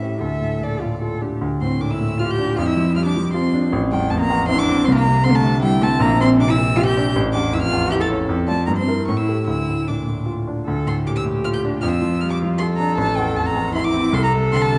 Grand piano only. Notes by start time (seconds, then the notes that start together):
Already playing: A2
0.01 E4 G4
0.21 D2
0.41 A2
0.60 A#2
0.82 A2
1.01 F4
1.21 D4
1.41 D2
1.61 A2
1.80 A#2
2.01 A2
2.20 F4
2.39 D4
2.58 F2
2.77 F3
2.96 G3
3.16 F3
3.34 F4
3.54 D4
3.72 A1
3.93 E2
4.11 F2
4.30 E2
4.49 E4
4.69 C4
4.88 C2
5.06 C3
5.26 D3
5.43 C3
5.63 E4
5.82 C4
6.00 A#1
6.20 A#2
6.40 C3
6.58 A#2
6.77 G4
6.97 D4
7.16 A1
7.35 E2
7.52 F2
7.73 E2
7.92 E4
8.10 C#4
8.29 F2
8.48 F4 D5
8.68 G2
8.87 E4 A#4
9.09 A2
9.29 G4 A4
9.47 D2
9.69 A2
9.89 A#2
10.07 A2
10.26 F4
10.47 D4
10.68 D2
10.86 A2
11.06 A#2
11.25 A2
11.45 F4
11.65 D4
11.83 F2
12.02 F3
12.23 G3
12.42 F3
12.61 F4
12.80 D4
12.98 A1
13.18 E2
13.37 F2
13.57 E2
13.75 E4
13.94 C4
14.13 C2
14.34 C3
14.52 D3
14.71 C3